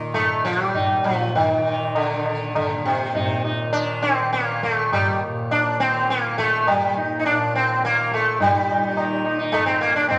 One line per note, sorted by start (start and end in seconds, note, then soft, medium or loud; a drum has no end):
0.00 0.54 D#2 medium
0.00 1.06 A#2 medium
0.00 1.60 D#3 medium
0.00 0.13 D#4 soft
0.14 0.44 A3 medium
0.14 tabla na medium
0.14 tabla ge medium
0.44 0.63 F3 medium
0.44 tabla te medium
0.54 2.64 D#2 medium
0.63 1.07 G3 medium
0.75 1.03 D#4 soft
0.75 tabla tin medium
0.75 tabla ge medium
1.04 3.16 A#2 medium
1.04 1.33 F3 medium
1.04 tabla na medium
1.20 tabla ke medium
1.35 1.92 D#3 medium
1.35 tabla tin medium
1.35 tabla ge medium
1.60 2.13 D#3 medium
1.65 1.93 D#4 soft
1.95 2.55 D3 medium
1.95 tabla na medium
2.13 3.68 D#3 medium
2.26 tabla na medium
2.55 2.85 D3 medium
2.55 tabla na medium
2.55 tabla ge medium
2.65 4.72 D#2 medium
2.85 3.41 C3 medium
2.85 tabla ge medium
3.15 5.24 A#2 medium
3.15 3.42 D#4 soft
3.15 tabla tin medium
3.15 tabla ge medium
3.44 3.72 D#4 soft
3.44 tabla na medium
3.68 4.19 D#3 medium
3.73 4.04 D4 medium
3.73 tabla na medium
4.02 4.32 C4 loud
4.02 tabla te medium
4.19 5.76 D#3 medium
4.33 4.63 A#3 medium
4.33 tabla te medium
4.63 4.92 A3 medium
4.63 tabla ke medium
4.72 6.79 D#2 medium
4.92 5.20 G3 medium
4.92 tabla na medium
4.92 tabla ge medium
5.24 7.29 A#2 medium
5.51 5.80 D4 medium
5.51 tabla na medium
5.76 6.27 D#3 medium
5.76 6.10 C4 loud
5.76 tabla te medium
6.09 6.38 A#3 medium
6.09 tabla te medium
6.27 7.80 D#3 medium
6.38 6.68 A3 medium
6.38 tabla ke medium
6.67 6.94 G3 medium
6.67 tabla na medium
6.67 tabla ge medium
6.79 9.91 D#2 medium
6.96 7.18 D#4 soft
7.19 7.25 D#4 medium
7.25 8.42 A#2 medium
7.25 7.55 D4 loud
7.25 tabla na medium
7.54 7.84 C4 medium
7.54 tabla te medium
7.80 8.91 D#3 medium
7.80 tabla te medium
7.85 8.11 A#3 medium
8.12 8.40 A3 medium
8.12 tabla ke medium
8.40 10.19 A#2 medium
8.40 9.23 G3 medium
8.40 8.53 D#4 soft
8.40 tabla tin loud
8.40 tabla ge medium
8.54 8.68 D#4 soft
8.69 8.82 D#4 soft
8.83 8.96 D#4 soft
8.91 9.42 D#3 medium
8.97 9.24 D#4 soft
8.97 tabla na medium
9.25 9.38 D#4 soft
9.25 tabla na medium
9.39 10.19 D#3 medium
9.39 9.66 D#4 soft
9.52 9.66 A3 medium
9.52 tabla na medium
9.52 tabla ge medium
9.66 9.80 C4 medium
9.81 9.95 A#3 medium
9.81 tabla te medium
9.91 10.19 D#2 medium
9.96 10.08 D4 medium
10.09 10.19 C4 medium
10.09 tabla tin medium
10.09 tabla ge medium